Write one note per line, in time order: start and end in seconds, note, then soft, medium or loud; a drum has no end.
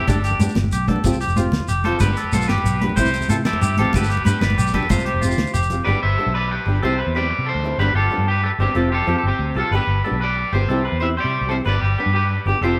0.07 0.33 G1 medium
0.07 0.17 D4 medium
0.07 0.53 D4 medium
0.07 0.18 G4 medium
0.07 0.53 G4 medium
0.07 0.23 A4 medium
0.07 muted steel-string acoustic guitar stroke medium
0.07 kick medium
0.07 closed hi-hat medium
0.07 muted conga medium
0.07 low conga soft
0.07 shekere medium
0.15 high conga medium
0.15 low conga soft
0.24 0.39 G4 medium
0.24 closed hi-hat soft
0.24 shekere soft
0.31 low conga medium
0.39 0.46 G2 medium
0.39 0.49 B3 medium
0.39 0.50 D4 medium
0.39 0.51 G4 medium
0.39 muted clean electric guitar stroke medium
0.39 closed hi-hat medium
0.39 high conga medium
0.39 low conga soft
0.39 shekere medium
0.49 shekere soft
0.55 0.68 G1 medium
0.55 snare medium
0.55 closed hi-hat medium
0.55 muted conga medium
0.64 high conga medium
0.64 low conga medium
0.72 0.97 B1 medium
0.72 0.87 G4 medium
0.72 closed hi-hat soft
0.72 low conga soft
0.72 shekere medium
0.88 0.97 B3 medium
0.88 0.98 D4 medium
0.88 0.99 G4 medium
0.88 1.19 A4 medium
0.88 kick medium
0.88 closed hi-hat soft
0.88 high conga medium
0.96 low conga medium
1.04 1.10 F1 medium
1.04 1.14 F3 medium
1.04 1.14 C4 medium
1.04 1.15 F4 medium
1.04 1.15 G4 medium
1.04 kick medium
1.04 closed hi-hat medium
1.04 muted conga medium
1.04 shekere medium
1.12 1.24 C2 medium
1.12 high conga medium
1.12 shekere soft
1.21 1.36 G4 medium
1.21 closed hi-hat soft
1.21 shekere soft
1.28 1.47 F1 medium
1.28 low conga medium
1.28 shekere soft
1.36 1.46 F3 medium
1.36 1.46 C4 medium
1.36 1.67 F4 medium
1.36 1.47 F4 medium
1.36 1.47 G4 medium
1.36 closed hi-hat soft
1.36 high conga medium
1.36 shekere medium
1.52 1.58 D2 medium
1.52 snare medium
1.52 closed hi-hat medium
1.52 muted conga medium
1.60 high conga medium
1.60 low conga medium
1.68 1.94 F1 medium
1.68 1.99 G4 medium
1.68 closed hi-hat soft
1.68 shekere medium
1.84 1.95 C4 medium
1.84 1.95 F4 medium
1.84 1.95 G4 medium
1.84 1.99 A4 medium
1.84 2.00 C5 medium
1.84 closed hi-hat soft
1.84 high conga medium
1.84 low conga soft
1.92 low conga medium
2.00 2.13 G1 medium
2.00 2.10 G3 medium
2.00 2.11 B3 medium
2.00 2.11 D4 medium
2.00 2.31 G4 medium
2.00 2.11 G4 medium
2.00 2.33 B4 medium
2.00 2.16 B4 medium
2.00 kick medium
2.00 closed hi-hat medium
2.00 muted conga medium
2.00 low conga soft
2.00 shekere medium
2.08 high conga medium
2.08 low conga soft
2.16 2.47 A4 medium
2.16 closed hi-hat soft
2.16 shekere soft
2.24 low conga medium
2.32 2.45 B1 medium
2.32 2.43 G3 medium
2.32 2.43 B3 medium
2.32 2.49 F4 medium
2.32 2.44 G4 medium
2.32 2.48 A4 medium
2.32 closed hi-hat soft
2.32 high conga medium
2.32 low conga soft
2.32 shekere medium
2.41 shekere soft
2.48 2.55 G1 medium
2.48 2.94 G4 medium
2.48 2.80 G4 medium
2.48 2.96 B4 medium
2.48 snare medium
2.48 closed hi-hat medium
2.48 muted conga medium
2.58 high conga medium
2.58 low conga medium
2.64 2.89 B1 medium
2.64 closed hi-hat medium
2.64 low conga soft
2.64 shekere medium
2.81 2.91 B3 medium
2.81 2.92 D4 medium
2.81 2.92 G4 medium
2.81 2.96 B4 medium
2.81 muted steel-string acoustic guitar stroke medium
2.81 closed hi-hat soft
2.81 high conga medium
2.89 low conga medium
2.96 3.03 C2 medium
2.96 3.07 E3 medium
2.96 3.07 C4 medium
2.96 3.08 E4 medium
2.96 3.27 G4 medium
2.96 3.08 G4 medium
2.96 3.26 C5 medium
2.96 3.28 C5 medium
2.96 kick medium
2.96 closed hi-hat medium
2.96 muted conga medium
2.96 shekere medium
3.04 3.24 C2 medium
3.04 high conga medium
3.04 shekere soft
3.14 closed hi-hat soft
3.14 shekere soft
3.21 low conga medium
3.21 shekere soft
3.28 3.42 C3 medium
3.28 3.38 E3 medium
3.28 3.39 C4 medium
3.28 3.40 E4 medium
3.28 3.34 F4 medium
3.28 3.40 G4 medium
3.28 3.35 A4 medium
3.28 closed hi-hat medium
3.28 high conga medium
3.28 shekere loud
3.45 3.76 E4 medium
3.45 3.76 G4 medium
3.45 3.61 A4 medium
3.45 snare medium
3.45 closed hi-hat medium
3.45 muted conga medium
3.53 high conga medium
3.53 low conga medium
3.61 3.74 G2 medium
3.61 3.77 G4 medium
3.61 closed hi-hat soft
3.61 shekere medium
3.77 3.84 A1 medium
3.77 3.87 E3 medium
3.77 3.88 C4 medium
3.77 3.93 F4 medium
3.77 3.93 G4 medium
3.77 3.89 G4 medium
3.77 3.95 A4 medium
3.77 closed hi-hat medium
3.77 high conga medium
3.77 low conga soft
3.85 low conga medium
3.93 4.19 G1 medium
3.93 4.04 B3 medium
3.93 4.04 D4 medium
3.93 4.24 G4 medium
3.93 4.04 G4 medium
3.93 4.09 A4 medium
3.93 4.25 B4 medium
3.93 kick medium
3.93 closed hi-hat medium
3.93 muted conga medium
3.93 shekere loud
4.01 high conga medium
4.01 shekere soft
4.09 4.24 G4 medium
4.09 closed hi-hat soft
4.09 low conga soft
4.09 shekere soft
4.17 low conga medium
4.25 4.32 G2 medium
4.25 4.35 B3 medium
4.25 4.36 D4 medium
4.25 4.41 G4 medium
4.25 4.56 B4 medium
4.25 4.42 B4 medium
4.25 closed hi-hat soft
4.25 high conga medium
4.25 shekere loud
4.29 4.37 G4 medium
4.41 4.54 G1 medium
4.41 4.72 B4 medium
4.41 4.75 D5 loud
4.41 snare medium
4.41 closed hi-hat medium
4.41 muted conga medium
4.41 low conga soft
4.50 high conga medium
4.50 low conga medium
4.57 4.83 B1 medium
4.57 4.73 G4 medium
4.57 closed hi-hat soft
4.57 low conga soft
4.57 shekere medium
4.67 low conga soft
4.67 shekere soft
4.73 4.83 B3 medium
4.73 4.84 D4 medium
4.73 4.88 G4 medium
4.73 4.85 G4 medium
4.73 5.05 A4 medium
4.73 4.89 B4 medium
4.73 kick medium
4.73 closed hi-hat soft
4.73 high conga medium
4.73 low conga soft
4.83 low conga medium
4.89 4.96 F1 medium
4.89 5.00 F3 medium
4.89 5.00 C4 medium
4.89 5.00 F4 medium
4.89 5.50 G4 medium
4.89 5.00 G4 medium
4.89 5.51 C5 medium
4.89 kick medium
4.89 closed hi-hat medium
4.89 muted conga medium
4.89 low conga soft
4.89 shekere medium
4.98 5.10 C2 medium
4.98 high conga medium
5.05 5.21 G4 medium
5.05 closed hi-hat soft
5.05 high conga soft
5.14 5.33 F1 medium
5.21 5.32 F3 medium
5.21 5.32 C4 medium
5.21 5.52 F4 medium
5.21 5.33 F4 medium
5.21 5.33 G4 medium
5.21 closed hi-hat soft
5.21 high conga medium
5.21 shekere medium
5.31 shekere soft
5.38 5.44 D2 medium
5.38 snare medium
5.38 closed hi-hat medium
5.38 high conga medium
5.47 shekere soft
5.54 5.79 F1 medium
5.54 5.84 G4 medium
5.54 closed hi-hat soft
5.54 low conga medium
5.54 shekere medium
5.62 shekere soft
5.70 5.80 F3 medium
5.70 5.81 C4 medium
5.70 5.81 F4 medium
5.70 5.82 G4 medium
5.70 closed hi-hat soft
5.70 low conga medium
5.70 shekere soft
5.84 5.93 G1 medium
5.84 5.96 G3 medium
5.84 5.96 B3 medium
5.84 5.97 D4 medium
5.84 5.97 G4 medium
5.84 6.00 B4 medium
5.84 6.17 B4 medium
5.84 6.02 D5 medium
6.03 6.16 G1 medium
6.03 6.32 C5 medium
6.03 6.35 E5 medium
6.17 6.28 G3 medium
6.17 6.28 B3 medium
6.17 6.29 D4 medium
6.17 6.29 G4 medium
6.17 6.33 A4 medium
6.26 6.58 B1 medium
6.34 6.50 B4 medium
6.34 6.50 D5 medium
6.51 6.81 G4 medium
6.51 6.84 B4 medium
6.66 6.79 G1 medium
6.66 6.76 G3 medium
6.66 6.77 D4 medium
6.66 6.78 G4 medium
6.82 7.02 C2 medium
6.82 6.93 E3 medium
6.82 6.93 C4 medium
6.82 6.93 E4 medium
6.82 7.13 G4 medium
6.82 6.93 G4 medium
6.82 6.98 A4 medium
6.82 7.16 C5 medium
6.99 7.29 B4 medium
7.07 7.32 E2 medium
7.14 7.24 E3 medium
7.14 7.25 C4 medium
7.14 7.26 G4 medium
7.14 7.45 B4 medium
7.14 7.49 D5 medium
7.14 muted steel-string acoustic guitar stroke medium
7.30 muted clean electric guitar stroke medium
7.39 7.51 C3 medium
7.46 7.77 A4 medium
7.46 7.78 C5 medium
7.55 7.74 D2 medium
7.63 7.73 E3 medium
7.63 7.74 C4 medium
7.63 7.74 E4 medium
7.63 7.74 G4 medium
7.78 7.91 G1 medium
7.78 7.89 G3 medium
7.78 7.90 B3 medium
7.78 7.90 D4 medium
7.78 7.94 G4 medium
7.78 7.90 G4 medium
7.78 7.95 B4 medium
7.78 7.96 B4 loud
7.94 8.07 G1 medium
7.94 8.25 F4 medium
7.94 8.26 G4 medium
7.94 8.29 A4 medium
8.10 8.20 G3 medium
8.10 8.21 B3 medium
8.10 8.21 D4 medium
8.10 8.22 G4 medium
8.18 8.50 G2 medium
8.28 8.43 G4 medium
8.28 8.42 G4 medium
8.28 8.44 B4 medium
8.43 8.48 G4 medium
8.43 8.59 A4 medium
8.43 8.51 B4 medium
8.59 8.65 G1 medium
8.59 8.69 G3 medium
8.59 8.70 B3 medium
8.59 8.90 C4 medium
8.59 8.70 D4 medium
8.59 8.75 G4 medium
8.59 8.92 G4 medium
8.59 8.71 G4 medium
8.75 9.00 F1 medium
8.75 8.85 C4 medium
8.75 8.86 F4 medium
8.75 8.86 G4 medium
8.75 8.91 A4 medium
8.75 muted steel-string acoustic guitar stroke medium
8.92 9.15 F4 medium
8.92 9.07 G4 medium
8.92 9.17 A4 medium
9.06 9.14 F2 medium
9.06 9.17 F3 medium
9.06 9.17 C4 medium
9.06 9.17 F4 medium
9.06 9.39 G4 medium
9.06 9.18 G4 medium
9.18 9.25 A4 medium
9.23 9.30 G1 medium
9.23 9.56 C4 medium
9.28 9.56 G4 medium
9.39 9.52 D2 medium
9.54 9.62 C2 medium
9.54 9.65 F3 medium
9.54 9.66 C4 medium
9.54 9.66 G4 medium
9.54 9.72 A4 medium
9.58 9.72 F4 medium
9.58 9.74 A4 medium
9.71 9.78 G1 loud
9.71 9.82 G3 medium
9.71 9.83 B3 medium
9.71 9.83 D4 medium
9.71 9.83 G4 medium
9.71 10.19 G4 medium
9.71 10.03 B4 medium
9.77 10.20 B4 medium
9.87 10.00 G1 medium
10.04 10.14 G3 medium
10.04 10.15 B3 medium
10.04 10.15 D4 medium
10.04 10.16 G4 medium
10.04 10.20 A4 medium
10.11 10.43 B1 medium
10.21 10.36 B4 medium
10.21 10.51 B4 medium
10.21 10.52 D5 medium
10.37 muted clean electric guitar stroke medium
10.53 10.65 G1 loud
10.53 10.62 G3 medium
10.53 10.63 B3 medium
10.53 10.63 D4 medium
10.53 10.98 G4 medium
10.53 10.64 G4 medium
10.53 10.99 C5 medium
10.68 10.87 C2 medium
10.68 10.79 E3 medium
10.68 10.79 C4 medium
10.68 10.80 E4 medium
10.68 10.80 G4 medium
10.68 10.84 A4 medium
10.85 11.16 B4 medium
10.92 11.18 E2 medium
11.00 11.11 C4 medium
11.00 11.11 E4 medium
11.00 11.12 G4 medium
11.00 11.05 C5 medium
11.00 11.07 E5 medium
11.00 muted steel-string acoustic guitar stroke medium
11.17 11.48 G4 medium
11.17 11.48 C5 medium
11.17 11.49 D5 medium
11.24 11.37 C3 medium
11.41 11.60 C2 medium
11.48 11.59 E3 medium
11.48 11.59 C4 medium
11.48 11.60 E4 medium
11.48 11.60 G4 medium
11.48 11.54 A4 medium
11.48 11.56 C5 medium
11.65 11.78 G1 loud
11.65 11.75 B3 medium
11.65 11.75 D4 medium
11.65 11.76 G4 medium
11.65 11.81 B4 medium
11.65 11.96 B4 medium
11.69 11.97 D5 medium
11.81 11.95 G1 medium
11.81 12.12 G4 medium
11.98 12.08 B3 medium
11.98 12.08 D4 medium
11.98 12.13 G4 medium
11.98 12.14 B4 medium
12.06 12.37 G2 medium
12.13 12.29 G4 medium
12.13 12.44 G4 medium
12.13 12.45 B4 medium
12.30 muted clean electric guitar stroke medium
12.46 12.52 G1 medium
12.46 12.56 B3 medium
12.46 12.56 D4 medium
12.46 12.62 G4 medium
12.46 12.57 G4 medium
12.61 12.79 F1 medium
12.61 12.72 F3 medium
12.61 12.72 C4 medium
12.61 12.73 F4 medium
12.61 12.79 G4 medium
12.61 12.73 G4 medium
12.61 12.77 A4 medium
12.61 12.79 C5 medium